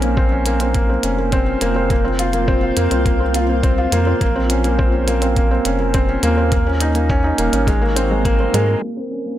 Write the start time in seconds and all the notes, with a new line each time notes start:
Already playing: A#1 A#3 C4 C#4 D#4
0.02 A#3, closed hi-hat
0.07 F4
0.17 C4, kick
0.32 C#4
0.46 A#3 C5, closed hi-hat
0.60 C4, closed hi-hat
0.74 A#3, kick, closed hi-hat
0.89 C4
1.03 F1 C#4, closed hi-hat
1.18 A#3
1.32 C4, kick, closed hi-hat
1.47 C#4
1.61 F1 A#3, closed hi-hat
1.76 C4
1.90 A#3, kick, closed hi-hat
2.00 C4
2.05 C4
2.19 F4, closed hi-hat
2.33 A#3, closed hi-hat
2.48 C4, kick
2.62 F4
2.77 F2 A#3, closed hi-hat
2.91 C2 C4, closed hi-hat
3.06 A#3, kick, closed hi-hat
3.20 C4
3.34 F4, closed hi-hat
3.49 A#3
3.63 C4, kick, closed hi-hat
3.78 F4
3.92 F2 A#3, closed hi-hat
4.07 C4
4.21 A#1 A#3, kick, closed hi-hat
4.36 C4
4.50 C#4, closed hi-hat
4.64 A#3, closed hi-hat
4.79 C4, kick
4.93 C#4
5.08 A#3, closed hi-hat
5.22 C4, closed hi-hat
5.36 A#3, kick, closed hi-hat
5.51 C4
5.65 F1 C#4, closed hi-hat
5.80 A#3
5.94 C4, kick, closed hi-hat
6.09 C#4
6.23 D#2 A#3, closed hi-hat
6.38 C4
6.52 A#3, kick, closed hi-hat
6.67 C#4
6.75 F#4
6.81 D#4, closed hi-hat
6.87 D#4
6.95 A#3, closed hi-hat
7.09 C#4, kick
7.24 D#4
7.38 D#1 A#3, closed hi-hat
7.53 G#1 C#4, closed hi-hat
7.67 G#3, kick, closed hi-hat
7.81 A#3
7.87 A#4
7.96 C4, closed hi-hat
8.08 G#3 G#4
8.25 A#3, kick, closed hi-hat
8.40 C4
8.53 G#2 G#3 A#4, closed hi-hat
8.68 A#3
8.82 A#3
8.97 C4
9.11 C#4
9.26 A#3
9.30 F4